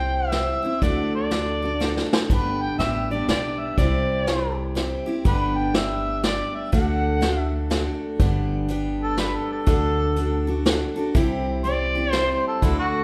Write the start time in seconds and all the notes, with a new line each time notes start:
Already playing: C2 G3 C4 E4 C5 G5
0.15 E5
0.32 G3 C4 E4 C5, snare, closed hi-hat
0.63 C4 E4 C5
0.82 D2 D3 A3 D4 F#4 A4 D5, kick, closed hi-hat
1.16 D5
1.31 A3 D4 F#4 A4, snare, closed hi-hat
1.62 D4 F#4 A4
1.80 A3 D4 F#4 A4, snare
1.97 snare
2.13 snare
2.30 G1 G2 D3 G3 B3 D4 G4 B4, kick, closed hi-hat
2.62 G5
2.79 A1 G3 B3 D4 G4 E5, snare, closed hi-hat
3.11 G3 B3 D4 G4 D5
3.28 B1 G3 B3 D4 G4 D5, snare, closed hi-hat
3.60 E5
3.78 C2 C3 G3 C4 E4 G4 D5, kick, closed hi-hat
4.27 G3 C4 E4 G4, snare, closed hi-hat
4.75 G3 C4 E4 G4, snare, closed hi-hat
5.06 C4 E4 G4
5.25 G1 G2 D3 G3 B3 D4 G4 B4, kick, closed hi-hat
5.58 G5
5.74 G3 B3 D4 G4 E5, snare, closed hi-hat
6.23 G3 B3 D4 G4 D5, snare, closed hi-hat
6.55 E5
6.72 D2 D3 A3 D4 F#4 A4 F#5, kick, closed hi-hat
7.21 A3 D4 F#4 A4, snare, closed hi-hat
7.39 E5
7.70 A3 D4 F#4 A4, snare, closed hi-hat
8.19 G1 G2 D3 G3 B3 D4 G4, kick, closed hi-hat
8.68 G3 B3 D4 G4, closed hi-hat
9.03 A4
9.17 G3 B3 D4 G4 B4, snare, closed hi-hat
9.36 A4
9.52 A4
9.66 D2 D3 A3 D4 F#4 A4, kick, closed hi-hat
10.16 A3 D4 F#4 A4, closed hi-hat
10.47 D4 F#4 A4
10.65 A3 D4 F#4 A4, snare, closed hi-hat
10.96 D4 F#4 A4
11.15 C2 C3 G3 C4 E4 G4, kick, closed hi-hat
11.64 G3 C4 E4 G4 D5, closed hi-hat
11.95 C4 E4 G4
12.12 G3 C4 E4 C5, snare, closed hi-hat
12.16 G4
12.30 C5
12.47 A4
12.62 D2 D3 A3 D4 E4 F#4 A4, kick, closed hi-hat
12.79 F#4